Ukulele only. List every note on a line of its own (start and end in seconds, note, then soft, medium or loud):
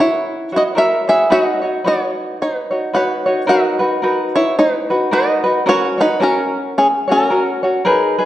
0.00 0.53 E4 medium
0.00 0.52 F#4 medium
0.00 0.52 A#4 medium
0.00 0.52 C#5 medium
0.52 0.74 E4 soft
0.52 0.75 F#4 soft
0.52 0.74 C#5 medium
0.75 1.07 E4 medium
0.75 1.08 F#4 medium
0.75 1.07 A#4 medium
0.75 1.06 C#5 medium
1.08 1.30 E4 soft
1.08 1.30 F#4 soft
1.08 1.29 C#5 medium
1.30 1.62 D#4 medium
1.30 1.62 F#4 medium
1.30 1.62 B4 medium
1.30 1.60 C#5 medium
1.62 1.84 D#4 soft
1.62 1.84 F#4 soft
1.62 1.84 C#5 medium
1.84 2.72 D#4 medium
1.84 2.71 F#4 medium
1.84 2.74 B4 medium
1.84 2.69 C#5 medium
2.71 2.93 D#4 soft
2.71 2.93 F#4 soft
2.71 2.93 C#5 soft
2.93 3.26 D#4 medium
2.93 3.26 F#4 medium
2.93 3.26 B4 medium
2.93 3.25 C#5 medium
3.26 3.46 D#4 soft
3.26 3.47 F#4 medium
3.26 3.48 C#5 medium
3.47 3.80 D#4 medium
3.47 3.79 F#4 medium
3.47 3.80 A#4 medium
3.47 3.78 B4 medium
3.79 4.02 D#4 soft
3.79 4.02 F#4 medium
3.79 4.02 B4 medium
4.02 4.90 D#4 medium
4.02 4.90 F#4 medium
4.02 4.93 A#4 medium
4.02 4.89 B4 medium
4.90 5.11 D#4 soft
4.90 5.12 F#4 medium
4.90 5.12 B4 medium
5.11 5.45 D#4 medium
5.11 5.44 F#4 medium
5.11 5.44 A#4 medium
5.11 5.42 B4 medium
5.44 5.66 D#4 soft
5.44 5.65 F#4 soft
5.44 5.66 B4 medium
5.66 5.98 C#4 medium
5.66 5.98 F#4 medium
5.66 5.99 A#4 medium
5.66 5.97 C#5 medium
5.98 6.19 C#4 soft
5.98 6.20 F#4 medium
5.98 6.20 C#5 medium
6.20 7.08 C#4 medium
6.20 7.08 F#4 medium
6.20 7.30 A#4 medium
6.20 7.06 C#5 medium
7.08 7.29 C#4 soft
7.08 7.30 F#4 medium
7.08 7.30 C#5 medium
7.30 7.63 C#4 medium
7.30 7.63 F#4 medium
7.30 7.63 A#4 medium
7.30 7.62 C#5 medium
7.63 7.85 C#4 soft
7.63 7.85 F#4 medium
7.63 7.85 C#5 medium
7.85 8.18 D#4 medium
7.85 8.18 G#4 medium
7.85 8.17 A#4 medium
7.85 8.17 B4 medium
8.18 8.25 D#4 medium
8.18 8.25 G#4 medium
8.18 8.25 B4 medium